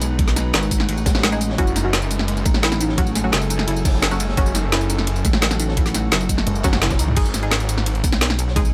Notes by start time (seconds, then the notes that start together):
Already playing: B1 G#3 D#4 F#4 B4
0.01 G#3, closed hi-hat, tambourine
0.19 G#3, kick, closed hi-hat, ride
0.28 snare, tambourine
0.36 D#4, snare, closed hi-hat, ride, tambourine
0.53 G#1 D#4, snare, closed hi-hat, ride
0.63 tambourine
0.71 D#4, kick, closed hi-hat, ride, tambourine
0.80 snare
0.89 A1, closed hi-hat, ride
0.97 tambourine
1.06 G#3, kick, snare, closed hi-hat, ride, tambourine
1.15 snare, ride
1.19 snare, ride
1.23 G#3, snare, closed hi-hat, ride
1.32 G#3 D#4 G#4, tambourine
1.41 G#3, closed hi-hat, ride, tambourine
1.50 snare
1.58 F#1 F#3 C#4 E4 F#4 G#4 A4, kick, closed hi-hat, ride
1.67 tambourine
1.76 D#4, snare, closed hi-hat, ride, tambourine
1.85 F#3 C#4 F#4
1.93 snare, closed hi-hat, ride
2.02 tambourine
2.11 G#3, closed hi-hat, ride, tambourine
2.19 snare
2.28 G#3, closed hi-hat, ride
2.37 ride, tambourine
2.45 A1 D#4, kick, closed hi-hat, ride, tambourine
2.54 snare
2.63 E4, snare, closed hi-hat, ride
2.72 snare, tambourine
2.80 D#4, closed hi-hat, ride, tambourine
2.89 snare
2.97 F#3 C#4 F#4, kick, closed hi-hat, ride
3.07 tambourine
3.15 G#3, snare, closed hi-hat, ride, tambourine
3.24 F#3 C#4 F#4
3.32 F#1 G#3, snare, closed hi-hat, ride
3.42 tambourine
3.50 D#4, closed hi-hat, ride, tambourine
3.59 snare
3.68 F#1 E4, closed hi-hat, ride
3.76 tambourine
3.85 D#4, kick, snare, closed hi-hat, open hi-hat, tambourine
3.94 snare
4.02 snare, closed hi-hat, ride
4.11 F#3 C#4 F#4, tambourine
4.20 G#3, closed hi-hat, ride, tambourine
4.29 snare
4.37 F#1 F#3 G#3 C#4 F#4, kick, closed hi-hat, ride
4.46 tambourine
4.55 D#4, snare, closed hi-hat, ride, tambourine
4.72 E4, snare, closed hi-hat, ride
4.81 tambourine
4.90 D#4, closed hi-hat, ride, tambourine
4.98 snare
5.07 closed hi-hat, ride
5.16 ride, tambourine
5.25 A1 G#3, kick, closed hi-hat, ride, tambourine
5.33 snare
5.42 G#3, snare, closed hi-hat, ride
5.51 snare, tambourine
5.59 D#4, closed hi-hat, ride, tambourine
5.69 snare
5.77 E4, kick, closed hi-hat, ride
5.86 snare, tambourine
5.94 D#4, snare, closed hi-hat, ride, tambourine
6.11 F#1, snare, closed hi-hat, ride
6.21 tambourine
6.29 G#3, kick, closed hi-hat, ride, tambourine
6.38 snare
6.47 F#1 G#3, closed hi-hat, ride
6.55 tambourine
6.63 F#3 C#4 D#4 F#4, kick, snare, closed hi-hat, high tom, ride, tambourine
6.73 snare, ride
6.82 E4, snare, closed hi-hat, mid tom, ride
6.90 kick, snare, mid tom, ride, tambourine
6.99 C#2 D#4, closed hi-hat, ride, tambourine
7.08 mid tom, ride
7.17 G#1 G#3 D#4 G#4, kick, closed hi-hat, crash, ride
7.25 tambourine
7.34 snare, closed hi-hat, ride, tambourine
7.43 G#3 D#4 G#4, closed hi-hat
7.51 snare, closed hi-hat, ride
7.60 closed hi-hat, tambourine
7.69 closed hi-hat, ride, tambourine
7.78 snare
7.86 closed hi-hat, ride
7.95 closed hi-hat, ride
8.04 B1, kick, closed hi-hat, ride, tambourine
8.12 snare, closed hi-hat
8.21 snare, closed hi-hat, ride
8.30 snare
8.39 closed hi-hat, ride, tambourine
8.48 snare
8.56 G#3 D#4 G#4, kick, closed hi-hat, ride
8.65 tambourine